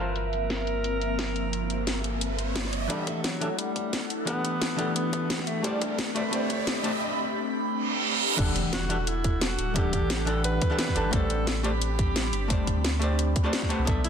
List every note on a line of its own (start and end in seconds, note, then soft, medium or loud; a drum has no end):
0.00 2.88 G1 medium
0.00 2.87 F3 medium
0.00 2.87 A#3 medium
0.00 2.87 C4 medium
0.00 2.71 F4 medium
0.00 0.16 A#4 medium
0.00 2.72 A#4 medium
0.00 2.72 C5 medium
0.00 2.86 E5 medium
0.00 2.71 A5 medium
0.16 2.52 A#4 loud
0.16 closed hi-hat medium
0.16 riser medium
0.33 closed hi-hat medium
0.50 snare loud
0.50 closed hi-hat medium
0.67 closed hi-hat medium
0.84 closed hi-hat medium
1.01 closed hi-hat medium
1.19 snare loud
1.19 closed hi-hat medium
1.36 closed hi-hat medium
1.53 closed hi-hat medium
1.70 closed hi-hat medium
1.87 snare loud
1.87 closed hi-hat medium
2.04 closed hi-hat medium
2.21 closed hi-hat medium
2.39 closed hi-hat medium
2.56 snare loud
2.56 closed hi-hat medium
2.65 snare soft
2.73 closed hi-hat medium
2.88 3.38 E3 medium
2.88 3.09 G3 loud
2.88 5.62 A3 medium
2.88 3.39 D4 medium
2.88 8.35 D4 medium
2.88 5.62 E4 medium
2.88 3.39 G4 medium
2.88 5.62 A4 medium
2.88 3.40 A4 medium
2.88 5.62 F#5 medium
2.88 kick loud
2.88 closed hi-hat medium
2.88 riser medium
2.92 3.41 F#5 medium
3.07 3.26 A3 medium
3.07 kick loud
3.07 closed hi-hat medium
3.24 3.60 F#3 medium
3.24 snare loud
3.24 closed hi-hat medium
3.40 3.47 E3 medium
3.40 3.47 D4 medium
3.40 3.48 G4 medium
3.40 3.48 A4 medium
3.40 3.48 E5 loud
3.40 closed hi-hat medium
3.59 4.10 G3 loud
3.59 closed hi-hat medium
3.76 kick medium
3.76 closed hi-hat medium
3.93 snare loud
3.93 closed hi-hat medium
4.10 closed hi-hat medium
4.25 4.75 E3 medium
4.25 4.92 B3 loud
4.25 4.76 D4 medium
4.25 4.77 G4 medium
4.25 4.77 A4 medium
4.25 kick loud
4.25 closed hi-hat medium
4.29 4.78 F#5 medium
4.45 closed hi-hat medium
4.62 snare loud
4.62 closed hi-hat medium
4.76 5.61 E3 loud
4.76 5.62 D4 medium
4.76 5.62 G4 medium
4.76 5.63 A4 medium
4.76 closed hi-hat medium
4.81 5.63 F#5 loud
4.96 5.49 B3 loud
4.96 closed hi-hat medium
5.13 kick loud
5.13 closed hi-hat medium
5.30 snare loud
5.30 closed hi-hat medium
5.39 kick medium
5.39 snare soft
5.47 5.66 A3 medium
5.47 closed hi-hat medium
5.62 5.99 G3 loud
5.62 6.13 A3 medium
5.62 8.36 A3 medium
5.62 8.36 C4 medium
5.62 6.13 G4 medium
5.62 8.36 G4 medium
5.62 6.14 C5 medium
5.62 8.36 B5 medium
5.62 kick loud
5.62 closed hi-hat medium
5.67 6.15 D5 medium
5.82 kick loud
5.82 closed hi-hat medium
5.99 snare loud
5.99 closed hi-hat medium
6.15 6.21 A3 medium
6.15 6.80 A3 medium
6.15 6.22 G4 medium
6.15 6.22 B4 medium
6.15 6.22 C5 medium
6.15 6.22 D5 loud
6.15 closed hi-hat medium
6.31 6.81 A3 medium
6.31 6.82 G4 medium
6.31 6.83 C5 medium
6.31 closed hi-hat medium
6.35 6.84 D5 medium
6.50 kick medium
6.50 closed hi-hat medium
6.67 snare loud
6.67 closed hi-hat loud
6.83 6.90 A3 medium
6.83 6.90 G4 medium
6.83 6.91 B4 medium
6.83 6.91 C5 medium
6.83 6.91 D5 loud
6.83 closed hi-hat medium
7.70 reverse cymbal medium
8.36 9.57 E1 loud
8.36 8.87 E3 medium
8.36 13.83 G3 medium
8.36 8.88 D4 medium
8.36 14.09 D4 medium
8.36 8.88 G4 medium
8.36 11.10 A4 medium
8.36 8.89 A4 medium
8.36 11.10 F#5 medium
8.36 kick loud
8.36 closed hi-hat loud
8.36 crash loud
8.36 impact medium
8.41 8.89 F#5 loud
8.56 closed hi-hat medium
8.73 9.09 F#4 loud
8.73 snare loud
8.73 closed hi-hat loud
8.89 8.96 E3 loud
8.89 8.96 D4 medium
8.89 8.96 G4 medium
8.89 8.97 A4 medium
8.89 8.97 E5 loud
8.89 closed hi-hat medium
9.07 9.44 E4 medium
9.07 closed hi-hat medium
9.24 kick loud
9.24 closed hi-hat medium
9.41 9.77 F#4 loud
9.41 snare loud
9.41 closed hi-hat loud
9.58 10.00 D1 medium
9.58 closed hi-hat medium
9.74 10.24 E3 medium
9.74 10.25 D4 medium
9.74 10.29 G4 loud
9.74 10.25 G4 medium
9.74 10.26 A4 medium
9.74 kick loud
9.74 closed hi-hat loud
9.78 10.26 F#5 medium
9.93 kick medium
9.93 closed hi-hat medium
10.02 10.60 A1 loud
10.10 snare loud
10.10 closed hi-hat medium
10.25 10.68 E3 loud
10.25 10.68 D4 medium
10.25 10.69 G4 medium
10.25 10.44 A4 loud
10.25 10.69 A4 medium
10.25 closed hi-hat medium
10.30 10.70 F#5 loud
10.44 10.77 B4 loud
10.44 closed hi-hat loud
10.62 kick loud
10.62 closed hi-hat medium
10.70 10.93 E3 loud
10.70 10.94 D4 medium
10.70 10.94 G4 medium
10.70 10.94 A4 medium
10.70 10.95 F#5 loud
10.79 11.15 B4 loud
10.79 snare loud
10.79 closed hi-hat loud
10.88 kick medium
10.88 snare soft
10.95 11.11 G1 medium
10.95 11.10 E3 loud
10.95 11.11 D4 medium
10.95 11.11 G4 medium
10.95 11.11 A4 medium
10.95 11.12 A5 loud
10.95 closed hi-hat medium
11.11 12.32 A1 loud
11.11 11.61 A3 medium
11.11 13.84 C4 medium
11.11 11.62 G4 medium
11.11 11.64 A4 loud
11.11 11.62 B4 medium
11.11 11.63 C5 medium
11.11 13.84 B5 medium
11.11 kick loud
11.11 closed hi-hat medium
11.15 11.64 D5 loud
11.30 closed hi-hat medium
11.47 snare loud
11.47 closed hi-hat loud
11.63 11.70 A3 loud
11.63 11.70 G4 medium
11.63 12.98 G4 loud
11.63 11.70 B4 medium
11.63 11.71 C5 medium
11.63 11.71 D5 loud
11.63 closed hi-hat medium
11.82 closed hi-hat medium
11.99 kick loud
11.99 closed hi-hat medium
12.16 snare loud
12.16 closed hi-hat medium
12.33 12.75 G1 medium
12.33 closed hi-hat medium
12.48 12.98 A3 medium
12.48 12.99 G4 medium
12.48 13.00 C5 medium
12.48 kick loud
12.48 closed hi-hat medium
12.52 13.01 D5 medium
12.67 kick medium
12.67 closed hi-hat medium
12.76 13.35 D2 loud
12.85 snare loud
12.85 closed hi-hat medium
12.99 13.42 A3 loud
12.99 13.42 G4 medium
12.99 13.43 C5 medium
12.99 closed hi-hat medium
13.04 13.44 D5 loud
13.19 closed hi-hat medium
13.36 kick loud
13.36 closed hi-hat medium
13.44 13.68 A3 loud
13.44 13.68 G4 medium
13.44 13.68 B4 medium
13.44 13.68 C5 medium
13.44 13.69 D5 loud
13.53 snare loud
13.53 closed hi-hat medium
13.62 kick medium
13.62 snare soft
13.69 13.85 A3 loud
13.69 13.85 G4 medium
13.69 13.85 B4 medium
13.69 13.85 C5 medium
13.69 13.86 F#5 loud
13.69 closed hi-hat medium
13.79 13.86 C2 loud
13.85 14.09 B1 loud
13.85 14.09 E3 medium
13.85 14.09 B3 medium
13.85 14.09 A4 medium
13.85 14.09 D5 medium
13.85 kick loud
13.85 closed hi-hat medium
13.89 14.09 E5 loud
14.04 14.09 E4 medium
14.04 closed hi-hat medium